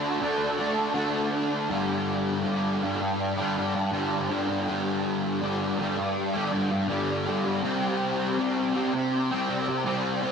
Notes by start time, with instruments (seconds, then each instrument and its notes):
Already playing: distorted electric guitar D3 A3 D4
0.20 distorted electric guitar D3 A3 D4
0.58 distorted electric guitar A3 D4
0.94 distorted electric guitar D3 A3 D4
1.70 distorted electric guitar G2 D3 G3
2.44 distorted electric guitar G2 D3 G3
2.82 distorted electric guitar G2 D3 G3
3.01 muted distorted electric guitar stroke
3.37 distorted electric guitar D3 G3
3.56 distorted electric guitar G2 D3 G3
3.75 muted distorted electric guitar stroke
3.92 distorted electric guitar G2 D3 G3
4.30 distorted electric guitar G2 D3 G3
4.48 distorted electric guitar D3 G3
4.68 distorted electric guitar G2 D3 G3
5.41 distorted electric guitar G2 D3 G3
5.79 distorted electric guitar G2 D3 G3
5.97 muted distorted electric guitar stroke
6.34 distorted electric guitar D3 G3
6.52 distorted electric guitar G2 D3 G3
6.71 muted distorted electric guitar stroke
6.88 distorted electric guitar G2 D3 G3
7.26 distorted electric guitar G2 D3 G3
7.44 distorted electric guitar D3 G3
7.63 distorted electric guitar C3 G3 C4
8.38 distorted electric guitar C3 G3 C4
8.74 distorted electric guitar C3 G3 C4
8.94 muted distorted electric guitar stroke
9.31 distorted electric guitar G3 C4
9.48 distorted electric guitar C3 G3 C4
9.68 muted distorted electric guitar stroke
9.85 distorted electric guitar C3 G3 C4
10.22 distorted electric guitar C3 G3 C4